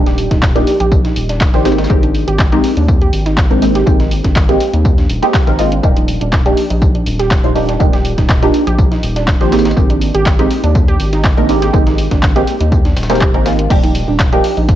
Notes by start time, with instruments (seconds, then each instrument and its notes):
Already playing: analog synth bass D#1, synth stab F3 A#3 D4 D#4 G4
0.06 synth pluck G4, snare, closed hi-hat
0.18 open hi-hat, tambourine
0.31 analog synth bass D#1, synth pluck D#4, kick, snare, closed hi-hat
0.42 kick, snare, clap, tambourine
0.55 synth stab F3 A#3 D4 D#4 G4, synth pluck D4, snare, closed hi-hat
0.67 open hi-hat, tambourine
0.80 analog synth bass A#1, synth pluck G4, closed hi-hat
0.92 kick, tambourine
1.05 synth pluck D#4, snare, closed hi-hat
1.16 analog synth bass D#1, open hi-hat, tambourine
1.29 synth pluck D4, snare, closed hi-hat
1.41 kick, snare, clap, tambourine
1.54 analog synth bass G#1, synth stab F3 A#3 D4 D#4 C5, synth pluck G4, snare, closed hi-hat
1.65 synth stab G#3 A#3 C4 D#4 G4, snare, open hi-hat, tambourine
1.72 snare, tambourine
1.78 synth pluck D#4, snare, closed hi-hat, tambourine
1.84 snare, tambourine
1.90 analog synth bass G#1, synth stab G#3 A#3 C4 D#4 G4, kick, tambourine
2.03 synth pluck D4, closed hi-hat
2.15 open hi-hat, tambourine
2.28 analog synth bass G#1, synth pluck G4, closed hi-hat
2.39 kick, snare, clap, tambourine
2.52 synth stab G#3 A#3 C4 D#4 G4, synth pluck D#4, closed hi-hat
2.64 open hi-hat
2.77 analog synth bass D#2, synth pluck D4, closed hi-hat
2.88 kick, tambourine
3.01 synth pluck G4, closed hi-hat
3.13 analog synth bass G#1, open hi-hat, tambourine
3.26 synth pluck D#4, snare, closed hi-hat
3.38 kick, snare, clap, tambourine
3.50 analog synth bass G#1, synth stab G#3 A#3 C4 D#4 A#4, synth pluck D4, closed hi-hat
3.62 synth stab G#3 A#3 C4 D#4 G4, open hi-hat, tambourine
3.75 synth pluck G4, snare, closed hi-hat
3.86 analog synth bass G#1, synth stab G#3 A#3 C4 D#4 G4, kick, tambourine
4.00 synth pluck D#4, snare, closed hi-hat
4.11 open hi-hat, tambourine
4.24 analog synth bass G#1, synth pluck D4, kick, snare, closed hi-hat
4.36 kick, snare, clap, tambourine
4.49 synth stab G#3 A#3 C4 D#4 G4, synth pluck G4, snare, closed hi-hat
4.60 open hi-hat, tambourine
4.74 analog synth bass D#2, synth pluck D#4, closed hi-hat
4.85 kick, tambourine
4.98 synth pluck D4, snare, closed hi-hat
5.10 analog synth bass D#1, open hi-hat, tambourine
5.23 synth stab G#3 A#3 C4 D#4 G4, synth pluck G4, snare, closed hi-hat
5.34 kick, snare, clap, tambourine
5.47 analog synth bass G#1, synth stab G#3 A#3 C4 D#4 A#4, synth pluck D#4, snare, closed hi-hat
5.59 synth stab G#3 A#3 C4 D#4 F4, open hi-hat, tambourine
5.72 synth pluck D4, closed hi-hat
5.83 analog synth bass D#1, synth stab F3 A#3 D4 D#4 G4, kick, tambourine
5.97 synth pluck D#4, closed hi-hat
6.08 open hi-hat, tambourine
6.21 analog synth bass D#1, synth pluck D4, closed hi-hat
6.33 kick, snare, clap, tambourine
6.45 synth stab F3 A#3 D4 D#4 G4, synth pluck G4, closed hi-hat
6.57 open hi-hat
6.70 analog synth bass A#1, synth pluck D#4, closed hi-hat
6.82 kick, tambourine
6.95 synth pluck D4, closed hi-hat
7.06 analog synth bass D#1, open hi-hat, tambourine
7.19 synth pluck G4, snare, closed hi-hat
7.31 kick, snare, clap, tambourine
7.44 analog synth bass D#1, synth stab F3 A#3 D4 D#4 C5, synth pluck D#4, closed hi-hat
7.55 synth stab F3 A#3 D4 D#4 G4, open hi-hat, tambourine
7.69 synth pluck D4, snare, closed hi-hat
7.80 analog synth bass D#1, synth stab F3 A#3 D4 D#4 G4, kick, tambourine
7.93 synth pluck G4, snare, closed hi-hat
8.05 open hi-hat, tambourine
8.18 analog synth bass D#1, synth pluck D#4, kick, snare, closed hi-hat
8.29 kick, snare, clap, tambourine
8.42 synth stab F3 A#3 D4 D#4 G4, synth pluck D4, snare, closed hi-hat
8.54 open hi-hat, tambourine
8.67 analog synth bass A#1, synth pluck G4, closed hi-hat
8.78 kick, tambourine
8.92 synth pluck D#4, snare, closed hi-hat
9.03 analog synth bass D#1, open hi-hat, tambourine
9.16 synth pluck D4, snare, closed hi-hat
9.28 kick, snare, clap, tambourine
9.41 analog synth bass G#1, synth stab F3 A#3 D4 D#4 C5, synth pluck G4, snare, closed hi-hat
9.52 synth stab G#3 A#3 C4 D#4 G4, snare, open hi-hat, tambourine
9.59 snare, tambourine
9.65 synth pluck D#4, snare, closed hi-hat, tambourine
9.71 snare, tambourine
9.76 analog synth bass G#1, synth stab G#3 A#3 C4 D#4 G4, kick, tambourine
9.90 synth pluck D4, closed hi-hat
10.01 open hi-hat, tambourine
10.15 analog synth bass G#1, synth pluck G4, closed hi-hat
10.26 kick, snare, clap, tambourine
10.39 synth stab G#3 A#3 C4 D#4 G4, synth pluck D#4, closed hi-hat
10.51 open hi-hat
10.64 analog synth bass D#2, synth pluck D4, closed hi-hat
10.75 kick, tambourine
10.88 synth pluck G4, closed hi-hat
11.00 analog synth bass G#1, open hi-hat, tambourine
11.13 synth pluck D#4, snare, closed hi-hat
11.24 kick, snare, clap, tambourine
11.37 analog synth bass G#1, synth stab G#3 A#3 C4 D#4 A#4, synth pluck D4, closed hi-hat
11.49 synth stab G#3 A#3 C4 D#4 G4, open hi-hat, tambourine
11.62 synth pluck G4, snare, closed hi-hat
11.73 analog synth bass G#1, synth stab G#3 A#3 C4 D#4 G4, kick, tambourine
11.87 synth pluck D#4, snare, closed hi-hat
11.98 open hi-hat, tambourine
12.11 analog synth bass G#1, synth pluck D4, kick, snare, closed hi-hat
12.23 kick, snare, clap, tambourine
12.36 synth stab G#3 A#3 C4 D#4 G4, synth pluck G4, snare, closed hi-hat
12.47 open hi-hat, tambourine
12.60 analog synth bass D#2, synth pluck D#4, closed hi-hat
12.72 kick, tambourine
12.85 synth pluck D4, snare, closed hi-hat
12.97 analog synth bass D#1, snare, open hi-hat, tambourine
13.03 snare, tambourine
13.09 synth stab G#3 A#3 C4 D#4 G4, synth pluck A#4, snare, closed hi-hat, tambourine
13.15 snare, tambourine
13.21 synth pluck G4, kick, clap, tambourine
13.34 analog synth bass G#1, synth stab G#3 A#3 C4 D#4 A#4, synth pluck A#4, closed hi-hat
13.46 synth stab G#3 A#3 C4 D#4 F4, synth pluck A#4, snare, open hi-hat, tambourine
13.59 synth pluck A#3, closed hi-hat
13.70 analog synth bass D#1, synth stab F3 A#3 D4 D#4 G4, kick, closed hi-hat, crash, tambourine
13.83 synth pluck D#4, closed hi-hat
13.95 open hi-hat, tambourine
14.08 analog synth bass D#1, synth pluck D4
14.19 kick, snare, clap, closed hi-hat, tambourine
14.32 synth stab F3 A#3 D4 D#4 G4, synth pluck G4, closed hi-hat
14.44 open hi-hat
14.57 analog synth bass A#1, synth pluck D#4, closed hi-hat
14.69 kick, closed hi-hat, tambourine